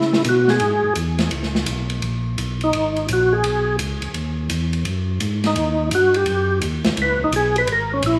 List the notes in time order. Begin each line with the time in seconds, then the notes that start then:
Already playing: C#3 E4
0.01 snare
0.13 snare
0.24 B2, hi-hat pedal, ride
0.29 F#4
0.48 G#4, snare
0.60 G#2, ride
0.84 G#2
0.95 E2, hi-hat pedal, ride
1.18 snare, ride
1.31 C#2, ride
1.43 snare
1.55 snare
1.66 B1, hi-hat pedal, ride
1.90 ride
2.02 A#1, ride
2.38 B1, hi-hat pedal, ride
2.61 D#4, ride
2.73 G#1, ride
2.96 ride
3.08 A#1, hi-hat pedal, ride
3.13 F#4
3.33 G#4
3.44 B1, ride
3.78 C#2, hi-hat pedal, ride
4.02 C#2, ride
4.14 D#2, ride
4.50 E2, hi-hat pedal, ride
4.73 ride
4.85 F#2, ride
5.20 G#2, hi-hat pedal, ride
5.44 D#4, snare, ride
5.56 D#2, ride
5.91 G2 F#4, hi-hat pedal, ride
6.14 G4, ride
6.26 F#2, ride
6.61 D#2, hi-hat pedal, ride
6.84 D#2, snare, ride
6.96 C#2, ride
7.02 B4
7.19 C#2
7.24 D#4
7.31 B1, hi-hat pedal, ride
7.36 G#4
7.56 B4, ride
7.67 G#1, ride
7.72 A#4
7.94 C#4
8.01 A#1, hi-hat pedal, ride
8.06 E4